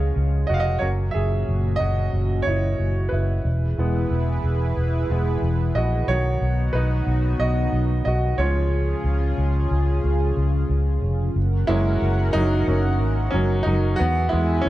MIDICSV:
0, 0, Header, 1, 4, 480
1, 0, Start_track
1, 0, Tempo, 658545
1, 601, Time_signature, 4, 2, 24, 8
1, 10707, End_track
2, 0, Start_track
2, 0, Title_t, "Analog synth pad"
2, 0, Program_c, 0, 89
2, 0, Note_on_c, 0, 49, 89
2, 0, Note_on_c, 0, 61, 83
2, 0, Note_on_c, 0, 68, 88
2, 0, Note_on_c, 0, 77, 75
2, 578, Note_off_c, 0, 68, 0
2, 578, Note_off_c, 0, 77, 0
2, 579, Note_off_c, 0, 61, 0
2, 581, Note_off_c, 0, 49, 0
2, 594, Note_on_c, 0, 61, 64
2, 596, Note_on_c, 0, 46, 72
2, 601, Note_on_c, 0, 66, 82
2, 2499, Note_off_c, 0, 61, 0
2, 2500, Note_off_c, 0, 46, 0
2, 2502, Note_off_c, 0, 66, 0
2, 2524, Note_on_c, 0, 64, 72
2, 2527, Note_on_c, 0, 68, 72
2, 2528, Note_on_c, 0, 52, 76
2, 2529, Note_on_c, 0, 71, 85
2, 4424, Note_off_c, 0, 64, 0
2, 4425, Note_off_c, 0, 68, 0
2, 4426, Note_off_c, 0, 52, 0
2, 4426, Note_off_c, 0, 71, 0
2, 4434, Note_on_c, 0, 66, 88
2, 4435, Note_on_c, 0, 63, 74
2, 4438, Note_on_c, 0, 59, 81
2, 6102, Note_off_c, 0, 66, 0
2, 6103, Note_off_c, 0, 63, 0
2, 6104, Note_off_c, 0, 59, 0
2, 6122, Note_on_c, 0, 68, 89
2, 6129, Note_on_c, 0, 65, 70
2, 6130, Note_on_c, 0, 61, 70
2, 6132, Note_on_c, 0, 49, 79
2, 8262, Note_off_c, 0, 68, 0
2, 8265, Note_off_c, 0, 65, 0
2, 8266, Note_off_c, 0, 61, 0
2, 8267, Note_off_c, 0, 49, 0
2, 8277, Note_on_c, 0, 61, 76
2, 8279, Note_on_c, 0, 70, 76
2, 8281, Note_on_c, 0, 66, 81
2, 8285, Note_on_c, 0, 78, 88
2, 10182, Note_off_c, 0, 61, 0
2, 10182, Note_off_c, 0, 70, 0
2, 10184, Note_off_c, 0, 66, 0
2, 10185, Note_off_c, 0, 78, 0
2, 10202, Note_on_c, 0, 76, 81
2, 10204, Note_on_c, 0, 68, 76
2, 10206, Note_on_c, 0, 71, 74
2, 10209, Note_on_c, 0, 80, 92
2, 10707, Note_off_c, 0, 68, 0
2, 10707, Note_off_c, 0, 71, 0
2, 10707, Note_off_c, 0, 76, 0
2, 10707, Note_off_c, 0, 80, 0
2, 10707, End_track
3, 0, Start_track
3, 0, Title_t, "Grand piano"
3, 0, Program_c, 1, 0
3, 0, Control_c, 1, 64, 127
3, 0, Note_on_c, 1, 53, 49
3, 0, Note_on_c, 1, 56, 49
3, 0, Note_on_c, 1, 61, 56
3, 0, Note_on_c, 1, 65, 67
3, 0, Note_on_c, 1, 66, 74
3, 0, Note_on_c, 1, 68, 74
3, 0, Note_on_c, 1, 73, 101
3, 0, Note_on_c, 1, 75, 102
3, 0, Note_on_c, 1, 77, 107
3, 320, Note_off_c, 1, 73, 0
3, 332, Note_off_c, 1, 65, 0
3, 341, Note_off_c, 1, 75, 0
3, 341, Note_on_c, 1, 75, 84
3, 360, Note_off_c, 1, 66, 0
3, 360, Note_on_c, 1, 66, 72
3, 393, Note_off_c, 1, 77, 0
3, 393, Note_on_c, 1, 77, 82
3, 404, Note_off_c, 1, 75, 0
3, 408, Note_off_c, 1, 66, 0
3, 436, Note_on_c, 1, 75, 93
3, 452, Note_on_c, 1, 66, 70
3, 453, Note_off_c, 1, 77, 0
3, 574, Note_on_c, 1, 73, 85
3, 584, Note_on_c, 1, 54, 51
3, 585, Note_off_c, 1, 66, 0
3, 588, Note_on_c, 1, 58, 44
3, 592, Note_off_c, 1, 75, 0
3, 594, Note_off_c, 1, 61, 0
3, 594, Note_on_c, 1, 61, 50
3, 596, Note_on_c, 1, 66, 71
3, 609, Control_c, 1, 64, 0
3, 610, Note_off_c, 1, 68, 0
3, 611, Note_off_c, 1, 53, 0
3, 612, Note_off_c, 1, 56, 0
3, 631, Note_off_c, 1, 73, 0
3, 651, Note_off_c, 1, 66, 0
3, 749, Control_c, 1, 64, 127
3, 810, Note_on_c, 1, 76, 78
3, 834, Note_on_c, 1, 68, 65
3, 911, Note_off_c, 1, 54, 0
3, 913, Note_off_c, 1, 58, 0
3, 916, Note_off_c, 1, 61, 0
3, 1283, Note_on_c, 1, 75, 100
3, 1288, Note_off_c, 1, 68, 0
3, 1312, Note_on_c, 1, 66, 70
3, 1320, Note_off_c, 1, 76, 0
3, 1753, Note_off_c, 1, 75, 0
3, 1767, Note_off_c, 1, 66, 0
3, 1767, Note_on_c, 1, 73, 89
3, 1797, Note_on_c, 1, 64, 62
3, 2250, Note_off_c, 1, 64, 0
3, 2250, Note_on_c, 1, 71, 69
3, 2279, Note_off_c, 1, 73, 0
3, 2280, Note_on_c, 1, 64, 53
3, 2529, Control_c, 1, 64, 0
3, 2643, Control_c, 1, 64, 127
3, 2756, Note_on_c, 1, 52, 46
3, 2761, Note_on_c, 1, 56, 40
3, 2764, Note_on_c, 1, 59, 54
3, 3078, Note_off_c, 1, 52, 0
3, 3081, Note_off_c, 1, 56, 0
3, 3082, Note_off_c, 1, 59, 0
3, 3197, Note_off_c, 1, 71, 0
3, 3212, Note_off_c, 1, 64, 0
3, 3722, Note_on_c, 1, 52, 44
3, 3723, Note_on_c, 1, 56, 38
3, 3726, Note_on_c, 1, 59, 45
3, 3938, Note_off_c, 1, 52, 0
3, 3939, Note_off_c, 1, 56, 0
3, 3940, Note_off_c, 1, 59, 0
3, 4191, Note_on_c, 1, 75, 83
3, 4206, Note_on_c, 1, 66, 70
3, 4428, Note_off_c, 1, 66, 0
3, 4432, Note_on_c, 1, 73, 91
3, 4439, Note_on_c, 1, 51, 49
3, 4441, Note_on_c, 1, 54, 44
3, 4444, Note_off_c, 1, 75, 0
3, 4445, Note_on_c, 1, 59, 58
3, 4447, Note_on_c, 1, 66, 71
3, 4452, Control_c, 1, 64, 0
3, 4585, Control_c, 1, 64, 127
3, 4896, Note_off_c, 1, 66, 0
3, 4903, Note_on_c, 1, 71, 83
3, 4920, Note_on_c, 1, 63, 73
3, 4932, Note_off_c, 1, 73, 0
3, 5131, Note_off_c, 1, 51, 0
3, 5132, Note_off_c, 1, 54, 0
3, 5135, Note_off_c, 1, 59, 0
3, 5364, Note_off_c, 1, 71, 0
3, 5372, Note_off_c, 1, 63, 0
3, 5391, Note_on_c, 1, 75, 94
3, 5407, Note_on_c, 1, 66, 70
3, 5856, Note_off_c, 1, 66, 0
3, 5856, Note_off_c, 1, 75, 0
3, 5867, Note_on_c, 1, 75, 84
3, 5885, Note_on_c, 1, 66, 70
3, 6098, Note_off_c, 1, 75, 0
3, 6107, Note_off_c, 1, 66, 0
3, 6107, Note_on_c, 1, 73, 83
3, 6114, Note_on_c, 1, 53, 50
3, 6120, Note_on_c, 1, 56, 45
3, 6121, Note_on_c, 1, 61, 56
3, 6121, Note_on_c, 1, 65, 61
3, 6133, Control_c, 1, 64, 0
3, 6242, Control_c, 1, 64, 127
3, 6438, Note_off_c, 1, 53, 0
3, 6441, Note_off_c, 1, 56, 0
3, 6441, Note_off_c, 1, 61, 0
3, 8007, Note_off_c, 1, 73, 0
3, 8014, Note_off_c, 1, 65, 0
3, 8294, Control_c, 1, 64, 0
3, 8402, Control_c, 1, 64, 127
3, 8508, Note_on_c, 1, 64, 101
3, 8517, Note_on_c, 1, 54, 58
3, 8519, Note_on_c, 1, 58, 52
3, 8523, Note_on_c, 1, 61, 62
3, 8524, Note_on_c, 1, 56, 69
3, 8975, Note_off_c, 1, 56, 0
3, 8986, Note_on_c, 1, 63, 112
3, 8993, Note_off_c, 1, 54, 0
3, 9004, Note_on_c, 1, 54, 77
3, 9011, Note_off_c, 1, 64, 0
3, 9212, Note_off_c, 1, 58, 0
3, 9214, Note_off_c, 1, 61, 0
3, 9227, Note_off_c, 1, 54, 0
3, 9238, Note_on_c, 1, 54, 45
3, 9243, Note_on_c, 1, 58, 45
3, 9243, Note_on_c, 1, 61, 53
3, 9457, Note_off_c, 1, 54, 0
3, 9459, Note_off_c, 1, 58, 0
3, 9459, Note_off_c, 1, 61, 0
3, 9698, Note_on_c, 1, 61, 85
3, 9725, Note_on_c, 1, 54, 66
3, 9737, Note_off_c, 1, 63, 0
3, 9933, Note_off_c, 1, 61, 0
3, 9934, Note_on_c, 1, 63, 91
3, 9948, Note_off_c, 1, 54, 0
3, 9965, Note_on_c, 1, 54, 68
3, 10171, Note_off_c, 1, 63, 0
3, 10175, Note_on_c, 1, 66, 113
3, 10188, Note_off_c, 1, 54, 0
3, 10201, Note_on_c, 1, 59, 85
3, 10213, Control_c, 1, 64, 0
3, 10359, Control_c, 1, 64, 127
3, 10412, Note_off_c, 1, 66, 0
3, 10416, Note_on_c, 1, 64, 96
3, 10426, Note_off_c, 1, 59, 0
3, 10435, Note_on_c, 1, 52, 56
3, 10440, Note_on_c, 1, 56, 68
3, 10440, Note_on_c, 1, 59, 56
3, 10652, Note_off_c, 1, 64, 0
3, 10652, Note_on_c, 1, 61, 94
3, 10667, Note_off_c, 1, 56, 0
3, 10670, Note_off_c, 1, 52, 0
3, 10681, Note_on_c, 1, 52, 72
3, 10707, Note_off_c, 1, 52, 0
3, 10707, Note_off_c, 1, 59, 0
3, 10707, Note_off_c, 1, 61, 0
3, 10707, End_track
4, 0, Start_track
4, 0, Title_t, "Fingered electric bass"
4, 0, Program_c, 2, 33
4, 0, Note_on_c, 2, 37, 88
4, 76, Note_off_c, 2, 37, 0
4, 116, Note_on_c, 2, 37, 89
4, 315, Note_off_c, 2, 37, 0
4, 362, Note_on_c, 2, 29, 94
4, 558, Note_off_c, 2, 29, 0
4, 597, Note_on_c, 2, 30, 82
4, 795, Note_off_c, 2, 30, 0
4, 840, Note_on_c, 2, 30, 83
4, 1037, Note_off_c, 2, 30, 0
4, 1083, Note_on_c, 2, 30, 88
4, 1279, Note_off_c, 2, 30, 0
4, 1318, Note_on_c, 2, 30, 79
4, 1516, Note_off_c, 2, 30, 0
4, 1554, Note_on_c, 2, 30, 79
4, 1754, Note_off_c, 2, 30, 0
4, 1798, Note_on_c, 2, 30, 72
4, 1996, Note_off_c, 2, 30, 0
4, 2038, Note_on_c, 2, 30, 69
4, 2236, Note_off_c, 2, 30, 0
4, 2277, Note_on_c, 2, 30, 78
4, 2475, Note_off_c, 2, 30, 0
4, 2514, Note_on_c, 2, 28, 83
4, 2714, Note_off_c, 2, 28, 0
4, 2757, Note_on_c, 2, 28, 86
4, 2956, Note_off_c, 2, 28, 0
4, 2994, Note_on_c, 2, 28, 79
4, 3194, Note_off_c, 2, 28, 0
4, 3233, Note_on_c, 2, 28, 84
4, 3433, Note_off_c, 2, 28, 0
4, 3477, Note_on_c, 2, 28, 82
4, 3676, Note_off_c, 2, 28, 0
4, 3715, Note_on_c, 2, 28, 76
4, 3915, Note_off_c, 2, 28, 0
4, 3952, Note_on_c, 2, 28, 82
4, 4153, Note_off_c, 2, 28, 0
4, 4193, Note_on_c, 2, 34, 76
4, 4393, Note_off_c, 2, 34, 0
4, 4431, Note_on_c, 2, 35, 95
4, 4633, Note_off_c, 2, 35, 0
4, 4674, Note_on_c, 2, 35, 92
4, 4874, Note_off_c, 2, 35, 0
4, 4910, Note_on_c, 2, 35, 94
4, 5112, Note_off_c, 2, 35, 0
4, 5151, Note_on_c, 2, 35, 98
4, 5352, Note_off_c, 2, 35, 0
4, 5389, Note_on_c, 2, 35, 87
4, 5592, Note_off_c, 2, 35, 0
4, 5631, Note_on_c, 2, 35, 87
4, 5832, Note_off_c, 2, 35, 0
4, 5873, Note_on_c, 2, 35, 86
4, 6074, Note_off_c, 2, 35, 0
4, 6109, Note_on_c, 2, 37, 93
4, 6508, Note_off_c, 2, 37, 0
4, 6590, Note_on_c, 2, 37, 86
4, 6792, Note_off_c, 2, 37, 0
4, 6837, Note_on_c, 2, 37, 98
4, 7036, Note_off_c, 2, 37, 0
4, 7077, Note_on_c, 2, 37, 90
4, 7276, Note_off_c, 2, 37, 0
4, 7317, Note_on_c, 2, 37, 92
4, 7517, Note_off_c, 2, 37, 0
4, 7558, Note_on_c, 2, 37, 84
4, 7757, Note_off_c, 2, 37, 0
4, 7794, Note_on_c, 2, 37, 79
4, 7995, Note_off_c, 2, 37, 0
4, 8033, Note_on_c, 2, 29, 79
4, 8234, Note_off_c, 2, 29, 0
4, 8279, Note_on_c, 2, 30, 100
4, 8478, Note_off_c, 2, 30, 0
4, 8518, Note_on_c, 2, 30, 105
4, 8717, Note_off_c, 2, 30, 0
4, 8761, Note_on_c, 2, 30, 97
4, 8959, Note_off_c, 2, 30, 0
4, 8999, Note_on_c, 2, 30, 95
4, 9198, Note_off_c, 2, 30, 0
4, 9240, Note_on_c, 2, 30, 100
4, 9479, Note_off_c, 2, 30, 0
4, 9479, Note_on_c, 2, 32, 91
4, 9678, Note_off_c, 2, 32, 0
4, 9720, Note_on_c, 2, 30, 81
4, 9919, Note_off_c, 2, 30, 0
4, 9959, Note_on_c, 2, 30, 86
4, 10158, Note_off_c, 2, 30, 0
4, 10208, Note_on_c, 2, 40, 97
4, 10403, Note_off_c, 2, 40, 0
4, 10446, Note_on_c, 2, 40, 98
4, 10642, Note_off_c, 2, 40, 0
4, 10685, Note_on_c, 2, 40, 93
4, 10707, Note_off_c, 2, 40, 0
4, 10707, End_track
0, 0, End_of_file